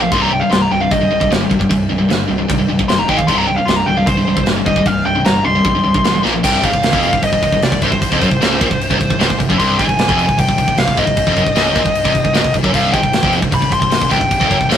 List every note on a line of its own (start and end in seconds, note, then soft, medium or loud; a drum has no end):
0.01 0.12 A#2 medium
0.01 0.11 F3 medium
0.01 0.11 F5 medium
0.12 0.40 C1 loud
0.12 0.30 C2 loud
0.12 0.30 G2 loud
0.12 0.31 C3 loud
0.12 0.21 C6 medium
0.12 kick loud
0.12 crash medium
0.22 0.33 A#5 medium
0.31 0.40 C2 medium
0.31 0.39 G2 medium
0.31 0.42 G5 medium
0.40 0.48 C2 medium
0.40 0.49 G2 medium
0.40 0.50 F5 medium
0.50 0.66 C1 medium
0.50 0.68 C2 medium
0.50 0.69 G2 medium
0.50 0.62 C6 medium
0.50 snare loud
0.50 crash medium
0.62 0.71 A#5 medium
0.71 0.86 C1 medium
0.71 0.80 C2 medium
0.71 0.79 G2 medium
0.71 0.81 G5 medium
0.80 0.90 C2 medium
0.80 0.90 G2 medium
0.80 0.91 F5 medium
0.91 1.05 C1 loud
0.91 1.00 C2 medium
0.91 0.99 G2 medium
0.91 1.29 D#5 loud
0.91 kick loud
0.91 crash medium
1.01 1.10 C2 medium
1.01 1.09 G2 medium
1.11 1.26 C1 medium
1.11 1.20 C2 medium
1.11 1.19 G2 medium
1.20 1.29 C2 medium
1.20 1.30 G2 medium
1.20 kick medium
1.31 1.46 G1 medium
1.31 1.40 C2 medium
1.31 1.40 G2 medium
1.31 snare loud
1.31 crash medium
1.41 1.49 C2 medium
1.41 1.48 G2 medium
1.50 1.65 G1 loud
1.50 1.58 C2 medium
1.50 1.58 G2 medium
1.50 kick medium
1.59 1.68 C2 medium
1.59 1.68 G2 medium
1.59 kick medium
1.69 1.85 C1 loud
1.69 1.87 C2 medium
1.69 1.88 G2 medium
1.69 kick loud
1.69 crash medium
1.89 2.04 C1 loud
1.89 1.97 C2 medium
1.89 1.97 G2 medium
1.98 2.08 C2 medium
1.98 2.08 G2 medium
2.09 2.24 G1 medium
2.09 2.27 C2 medium
2.09 2.27 G2 medium
2.09 snare loud
2.09 crash medium
2.28 2.44 C1 medium
2.28 2.38 C2 medium
2.28 2.37 G2 medium
2.38 2.47 C2 medium
2.38 2.48 G2 medium
2.48 2.64 C1 loud
2.48 2.57 C2 medium
2.48 2.57 G2 medium
2.48 kick loud
2.48 crash medium
2.58 2.67 C2 medium
2.58 2.67 G2 medium
2.68 2.84 C1 medium
2.68 2.78 C2 medium
2.68 2.77 G2 medium
2.79 2.87 C2 medium
2.79 2.88 G2 medium
2.79 kick medium
2.88 3.03 G1 medium
2.88 2.97 C2 medium
2.88 2.97 G2 medium
2.88 2.99 C6 loud
2.88 snare loud
2.88 crash medium
2.98 3.08 C2 medium
2.98 3.08 G2 medium
2.98 3.08 A#5 medium
3.08 3.23 G#1 medium
3.08 3.17 G#2 medium
3.08 3.17 D#3 medium
3.08 3.18 G#3 medium
3.08 3.17 G5 medium
3.08 kick medium
3.17 3.27 G#2 medium
3.17 3.28 D#3 medium
3.17 3.27 F5 loud
3.17 kick medium
3.27 3.56 C1 loud
3.27 3.46 C2 loud
3.27 3.46 G2 loud
3.27 3.47 C3 medium
3.27 3.37 C6 medium
3.27 kick loud
3.27 crash medium
3.38 3.47 A#5 medium
3.47 3.57 C2 medium
3.47 3.56 G2 medium
3.47 3.57 G5 medium
3.56 3.67 C2 medium
3.56 3.67 G2 medium
3.56 3.66 F5 medium
3.65 3.82 C1 medium
3.65 3.86 C2 medium
3.65 3.86 G2 medium
3.65 3.76 C6 medium
3.65 snare loud
3.65 crash medium
3.76 3.86 A#5 loud
3.86 4.02 C1 loud
3.86 3.96 C2 medium
3.86 3.96 G2 medium
3.86 3.97 G5 loud
3.97 4.05 C2 medium
3.97 4.06 G2 medium
3.97 4.07 F5 loud
4.06 4.21 C1 loud
4.06 4.17 C2 medium
4.06 4.16 G2 medium
4.06 4.45 C5 loud
4.06 kick loud
4.06 crash medium
4.17 4.26 C2 medium
4.17 4.26 G2 medium
4.27 4.41 C1 medium
4.27 4.36 C2 medium
4.27 4.35 G2 medium
4.36 4.46 C2 medium
4.36 4.46 G2 medium
4.36 kick medium
4.46 4.61 G1 medium
4.46 4.56 C2 medium
4.46 4.55 G2 medium
4.46 snare loud
4.46 crash medium
4.56 4.66 C2 medium
4.56 4.65 G2 medium
4.66 4.80 G1 medium
4.66 4.76 C2 medium
4.66 4.76 G2 medium
4.66 4.86 D#5 loud
4.66 kick medium
4.76 4.85 C2 medium
4.76 4.85 G2 medium
4.76 kick medium
4.86 5.00 C1 loud
4.86 5.04 C2 medium
4.86 5.04 G2 medium
4.86 5.05 F5 medium
4.86 kick loud
4.86 crash medium
5.05 5.20 C1 medium
5.05 5.15 C2 medium
5.05 5.14 G2 medium
5.05 5.25 G5 loud
5.15 5.23 C2 medium
5.15 5.23 G2 medium
5.25 5.39 G1 medium
5.25 5.43 C2 medium
5.25 5.43 G2 medium
5.25 5.45 A#5 medium
5.25 snare loud
5.25 crash medium
5.44 5.59 C1 loud
5.44 5.54 C2 medium
5.44 5.54 G2 medium
5.44 6.21 C6 loud
5.55 5.64 C2 medium
5.55 5.64 G2 medium
5.64 5.79 C1 loud
5.64 5.74 C2 medium
5.64 5.74 G2 medium
5.64 kick loud
5.64 crash medium
5.75 5.83 C2 medium
5.75 5.82 G2 medium
5.84 5.99 C1 medium
5.84 5.94 C2 medium
5.84 5.93 G2 medium
5.94 6.03 C2 medium
5.94 6.03 G2 medium
5.94 kick medium
6.04 6.19 A1 medium
6.04 6.13 C2 medium
6.04 6.13 G2 medium
6.04 snare loud
6.04 crash medium
6.14 6.23 C2 medium
6.14 6.23 G2 medium
6.23 6.38 A#1 medium
6.23 6.32 A#2 medium
6.23 6.32 F3 medium
6.23 6.33 A#3 loud
6.23 snare medium
6.34 6.43 A#2 medium
6.34 6.44 F3 medium
6.43 6.62 C1 loud
6.43 6.63 C2 loud
6.43 6.64 G5 medium
6.43 kick loud
6.43 crash loud
6.43 crash medium
6.63 6.73 G#1 loud
6.63 6.72 G#2 loud
6.63 7.19 F5 medium
6.63 kick loud
6.63 crash medium
6.73 6.83 C1 medium
6.73 6.82 C2 medium
6.73 kick medium
6.83 6.93 C1 medium
6.83 6.92 C2 medium
6.83 snare loud
6.83 crash medium
6.92 7.12 F1 medium
6.92 7.12 F2 medium
6.92 kick medium
7.03 crash medium
7.13 7.22 C1 medium
7.13 7.21 C2 medium
7.13 kick medium
7.23 7.32 C1 medium
7.23 7.32 C2 medium
7.23 7.63 D#5 loud
7.23 kick medium
7.23 crash medium
7.33 7.42 C1 medium
7.33 7.42 C2 medium
7.33 kick medium
7.43 7.52 C1 medium
7.43 7.53 C2 medium
7.43 kick medium
7.43 crash medium
7.52 7.62 C1 medium
7.52 7.62 C2 medium
7.52 kick medium
7.62 7.71 C1 medium
7.62 7.71 C2 medium
7.62 7.81 D5 medium
7.62 snare loud
7.62 crash medium
7.72 7.81 C1 medium
7.72 7.82 C2 medium
7.72 kick medium
7.82 7.91 C1 medium
7.82 7.91 C2 loud
7.82 9.36 C5 medium
7.82 kick medium
7.82 crash medium
7.92 8.10 C1 medium
7.92 8.07 C2 medium
7.92 kick medium
8.02 kick medium
8.02 crash medium
8.12 8.21 F1 medium
8.12 8.21 F2 loud
8.12 kick medium
8.21 8.31 F#1 loud
8.21 8.30 F#2 loud
8.21 kick medium
8.21 crash medium
8.31 8.41 C1 medium
8.31 8.40 C2 medium
8.31 kick medium
8.41 8.59 C#1 medium
8.41 8.60 C#2 loud
8.41 snare loud
8.41 crash medium
8.60 8.70 A#1 loud
8.60 8.69 A#2 loud
8.60 kick loud
8.60 crash medium
8.70 8.89 C1 medium
8.70 8.86 C2 medium
8.70 kick medium
8.81 crash medium
8.90 9.00 C1 medium
8.90 8.98 C2 loud
8.90 kick medium
9.00 9.10 C1 medium
9.00 9.09 C2 medium
9.00 kick medium
9.00 crash medium
9.10 9.19 C1 medium
9.10 9.19 C2 medium
9.10 kick medium
9.19 9.29 C#1 loud
9.19 9.29 C#2 loud
9.19 snare loud
9.19 crash medium
9.29 9.39 C1 medium
9.29 9.37 C2 medium
9.29 kick medium
9.39 9.49 C1 medium
9.39 9.48 C2 medium
9.39 kick medium
9.39 crash medium
9.49 9.59 F#1 loud
9.49 9.58 F#2 loud
9.49 kick medium
9.59 9.78 C1 loud
9.59 9.78 C2 loud
9.59 9.79 C6 loud
9.59 kick medium
9.59 crash medium
9.78 9.88 G#1 loud
9.78 9.87 G#2 loud
9.78 10.39 G#5 loud
9.78 kick loud
9.78 crash medium
9.88 9.98 C1 medium
9.88 9.97 C2 medium
9.88 kick medium
9.99 10.08 C1 medium
9.99 10.08 C2 medium
9.99 snare loud
9.99 crash medium
10.08 10.27 F1 loud
10.08 10.27 F2 loud
10.08 kick loud
10.19 crash medium
10.28 10.38 C1 medium
10.28 10.37 C2 medium
10.28 kick medium
10.38 10.47 C1 medium
10.38 10.47 C2 medium
10.38 10.79 G5 loud
10.38 kick medium
10.38 crash medium
10.48 10.57 C1 medium
10.48 10.56 C2 medium
10.48 kick medium
10.58 10.67 C1 medium
10.58 10.66 C2 medium
10.58 kick medium
10.58 crash medium
10.67 10.77 C1 medium
10.67 10.77 C2 medium
10.67 kick medium
10.77 10.86 C1 medium
10.77 10.86 C2 medium
10.77 10.98 F5 loud
10.77 snare loud
10.77 crash medium
10.87 10.96 C1 medium
10.87 10.96 C2 medium
10.87 kick medium
10.97 11.06 C1 medium
10.97 11.05 C2 loud
10.97 12.55 D#5 medium
10.97 kick medium
10.97 crash medium
11.06 11.25 C1 medium
11.06 11.22 C2 medium
11.06 kick medium
11.17 kick loud
11.17 crash medium
11.27 11.36 F1 medium
11.27 11.35 F2 loud
11.27 kick medium
11.36 11.46 F#1 loud
11.36 11.45 F#2 loud
11.36 kick medium
11.36 crash medium
11.45 11.56 C1 medium
11.45 11.55 C2 medium
11.45 kick medium
11.55 11.74 C#1 medium
11.55 11.74 C#2 loud
11.55 snare loud
11.55 crash medium
11.74 11.85 A#1 medium
11.74 11.84 A#2 loud
11.74 kick loud
11.74 crash medium
11.84 12.04 C1 medium
11.84 12.00 C2 medium
11.84 kick medium
11.95 crash medium
12.04 12.14 C1 medium
12.04 12.13 C2 medium
12.04 kick loud
12.14 12.24 C1 medium
12.14 12.23 C2 medium
12.14 kick medium
12.14 crash medium
12.24 12.34 C1 medium
12.24 12.33 C2 medium
12.24 kick medium
12.33 12.44 C#1 medium
12.33 12.43 C#2 loud
12.33 snare loud
12.33 crash medium
12.43 12.54 C1 medium
12.43 12.53 C2 medium
12.43 kick medium
12.54 12.63 C1 medium
12.54 12.62 C2 medium
12.54 kick medium
12.54 crash medium
12.63 12.73 F#1 medium
12.63 12.72 F#2 medium
12.63 kick medium
12.73 12.92 C1 loud
12.73 12.92 C2 loud
12.73 12.93 F5 medium
12.73 kick medium
12.73 crash medium
12.93 13.03 G#1 loud
12.93 13.02 G#2 loud
12.93 13.32 G5 loud
12.93 kick loud
12.93 crash medium
13.02 13.13 C1 medium
13.02 13.12 C2 medium
13.02 kick medium
13.13 13.22 C1 medium
13.13 13.22 C2 medium
13.13 snare loud
13.13 crash medium
13.22 13.41 F1 loud
13.22 13.41 F2 loud
13.22 kick medium
13.33 crash medium
13.41 13.52 C1 medium
13.41 13.50 C2 medium
13.41 kick loud
13.51 13.62 C1 medium
13.51 13.59 C2 medium
13.51 13.71 B5 loud
13.51 kick medium
13.51 crash medium
13.61 13.71 C1 medium
13.61 13.69 C2 medium
13.61 kick medium
13.70 13.81 C1 medium
13.70 13.78 C2 medium
13.70 14.13 C6 loud
13.70 kick medium
13.70 crash medium
13.79 13.91 C1 medium
13.79 13.89 C2 medium
13.79 kick medium
13.90 14.01 C1 medium
13.90 13.99 C2 medium
13.90 snare loud
13.90 crash medium
14.00 14.11 C1 medium
14.00 14.08 C2 medium
14.00 kick medium
14.09 14.21 C1 medium
14.09 14.19 C2 medium
14.09 14.66 G5 medium
14.09 kick medium
14.09 crash medium
14.20 14.40 C1 medium
14.20 14.36 C2 medium
14.20 kick medium
14.31 kick medium
14.31 crash medium
14.40 14.50 F1 medium
14.40 14.49 F2 loud
14.40 kick medium
14.49 14.60 F#1 loud
14.49 14.59 F#2 loud
14.49 kick medium
14.49 crash medium
14.59 14.69 C1 medium
14.59 14.69 C2 medium
14.59 kick medium
14.69 14.77 C#1 loud
14.69 14.77 C#2 loud
14.69 snare loud
14.69 crash medium